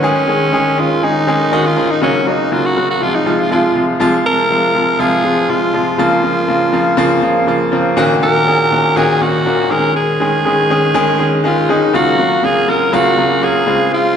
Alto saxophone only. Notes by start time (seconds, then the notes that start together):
Already playing: C#4
0.80 F4
1.04 D#4
1.54 F#4
1.66 F4
1.91 D#4
2.03 C#4
2.28 D#4
2.53 F4
2.66 F#4
2.90 F#4
3.03 F4
3.15 D#4
3.40 F4
3.52 F4
4.26 A#4
5.01 G#4
5.50 F4
5.99 F4
8.23 A#4
8.97 G#4
9.22 F#4
9.71 A#4
9.96 G#4
11.46 F4
11.71 D#4
11.95 F#4
12.45 G#4
12.70 A#4
12.95 F#4
13.44 G#4
13.94 F4